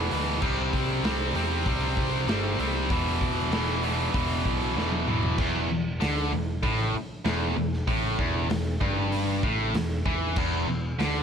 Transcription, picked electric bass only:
0.12 0.39 D2 medium
0.42 0.70 C2 medium
0.73 1.01 C2 medium
1.04 1.32 C2 medium
1.34 1.62 E2 medium
1.66 1.94 C2 medium
1.97 2.25 C2 medium
2.27 2.55 G1 medium
2.59 2.87 C2 medium
2.90 3.18 E1 loud
3.21 3.49 E1 medium
3.51 4.07 E1 medium
4.14 4.42 E1 medium
4.45 4.73 B1 medium
4.76 5.04 E1 medium
5.08 5.35 E1 medium
5.38 5.67 E1 medium
5.70 5.99 E1 medium
6.01 6.30 D2 medium
6.33 6.61 E1 medium
6.63 6.92 A1 medium
6.94 muted picked electric bass stroke soft
7.25 7.54 E1 medium
7.57 7.86 E1 medium
7.88 8.17 A1 medium
8.19 8.48 E1 medium
8.49 8.78 E1 medium
8.81 9.40 G1 loud
9.43 9.72 A1 medium
9.74 10.03 E1 medium
10.06 10.35 E2 medium
10.37 10.66 E1 loud
10.68 10.97 E1 medium
10.99 11.23 D2 medium

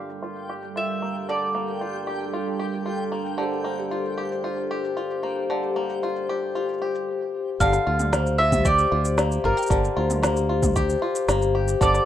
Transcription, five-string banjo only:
0.00 1.28 D3 medium
0.00 1.01 A#3 medium
0.00 0.22 F4 medium
0.00 0.49 G4 soft
0.22 0.76 F4 medium
0.49 2.06 G4 medium
0.76 1.81 F4 medium
1.02 1.54 A#3 soft
1.29 3.37 D3 medium
1.55 3.11 A#3 medium
1.81 2.33 F4 medium
2.07 2.59 G4 medium
2.33 2.86 F4 medium
2.59 4.16 G4 medium
2.86 3.91 F4 medium
3.12 3.64 A#3 soft
3.38 5.49 D3 medium
3.64 5.22 A#3 medium
3.91 4.44 F4 medium
4.18 4.70 G4 medium
4.44 4.97 F4 medium
4.71 6.28 G4 medium
4.97 6.03 F4 medium
5.23 5.76 A#3 medium
5.50 7.08 D3 medium
5.76 7.16 A#3 medium
6.03 6.55 F4 medium
6.29 6.82 G4 medium
6.55 7.58 F4 medium
6.82 7.58 G4 medium
7.61 9.69 D3 medium
7.87 8.38 F4 medium
8.13 9.17 A#3 medium
8.39 8.90 F4 medium
8.65 9.47 G4 medium
8.92 9.43 F4 medium
9.18 10.21 A#3 medium
9.44 9.57 F4 medium
9.57 10.75 G4 medium
9.70 11.80 D3 medium
9.97 10.48 F4 medium
10.23 11.27 A#3 medium
10.49 11.01 F4 medium
10.76 11.55 G4 medium
11.02 12.05 F4 medium
11.29 12.05 A#3 medium
11.55 12.05 G4 medium
11.81 12.05 D3 medium

